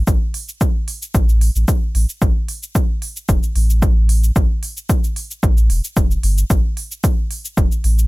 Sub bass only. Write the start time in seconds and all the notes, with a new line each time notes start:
0.07 A1
1.15 A1
1.56 A1
1.95 A1
2.22 A1
3.29 E1
3.56 A1
4.36 A1
5.43 A1
5.70 E1
5.97 E1
6.23 G1
6.50 A1
7.57 E1
7.84 A1